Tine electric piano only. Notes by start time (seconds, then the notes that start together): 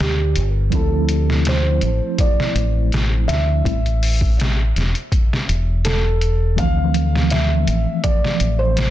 0.70 F3 A3 C4 E4
3.64 G3 A3 C4 E4
6.56 E3 F3 A3 C4